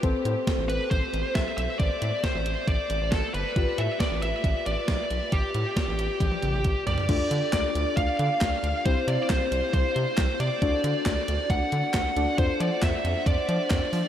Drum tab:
CC |----------------|----------------|----------------|----------------|
HH |x-x-x-x-x-x-x-x-|x-x-x-x-x-x-x-x-|x-x-x-x-x-x-x-x-|x-x-x-x-x-x-x-x-|
CP |----------------|----------------|----------------|----------------|
SD |----o-------o---|----o-------o---|----o-------o---|----o-----------|
T1 |----------------|----------------|----------------|--------oo------|
T2 |----------------|----------------|----------------|----------o-----|
FT |----------------|----------------|----------------|--------------oo|
BD |o---o---o---o---|o---o---o---o---|o---o---o---o---|o---o---o---o---|

CC |x---------------|----------------|----------------|----------------|
HH |x-x-x-x-x-x-x-x-|x-x-x-x-x-x-x-x-|x-x-x-x-x-x-x-x-|x-x-x-x-x-x-x-o-|
CP |----x-------x---|----x-------x---|----x-------x---|----x-------x---|
SD |----o-------o---|----o-------o---|----o-------o---|----o-------o---|
T1 |----------------|----------------|----------------|----------------|
T2 |----------------|----------------|----------------|----------------|
FT |----------------|----------------|----------------|----------------|
BD |o---o---o---o---|o---o---o---o---|o---o---o---o---|o---o---o---o---|